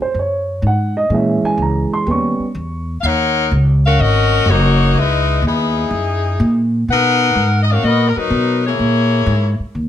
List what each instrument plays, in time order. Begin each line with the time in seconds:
0.00 upright piano C5, muted upright bass stroke
0.14 upright bass F#2
0.19 upright piano C#5
0.62 upright bass G#2
0.67 upright piano F#5
0.97 upright piano D#5
1.10 upright bass A#2, upright piano E3 G#3 C#4
1.15 upright piano E5
1.43 upright piano G#5, muted upright bass stroke
1.57 upright bass C#2
1.62 upright piano A#5
1.91 upright piano C6, muted upright bass stroke
2.06 upright bass D#2, upright piano G3 B3 C#4
2.11 upright piano C#6
2.40 muted upright bass stroke
2.55 upright bass E2
3.01 upright bass D#2, saxophone section F5
3.05 saxophone section D#4 A#4 C#5 F#5
3.51 upright bass C#2
3.86 saxophone section C#4 F#4 A#4 F5
3.99 upright bass G#1, saxophone section C#4 F#4 A#4 D#5
4.46 upright bass F#1, saxophone section A#3 D#4 F#4 C#5
4.94 upright bass C#2, saxophone section D#4 E4 B4
4.98 saxophone section G#3
5.42 upright bass D#2, saxophone section B3 D#4 E4 G#4
5.91 upright bass F#2
6.40 upright bass A#2
6.88 upright bass B2, saxophone section D#4 A#4 B4 F#5
7.35 upright bass G#2
7.62 saxophone section D#5
7.71 saxophone section C#4 F#4 A#4 F5
7.83 upright bass A#2, saxophone section B3 F#4 A#4 D#5
8.08 saxophone section A#4
8.17 saxophone section F#3 D#4 A#4 B4, muted upright bass stroke
8.30 upright bass B2
8.66 saxophone section A#3 E4 G#4 C#5
8.79 upright bass A#2
9.26 upright bass G#2
9.60 muted upright bass stroke
9.75 upright bass D#2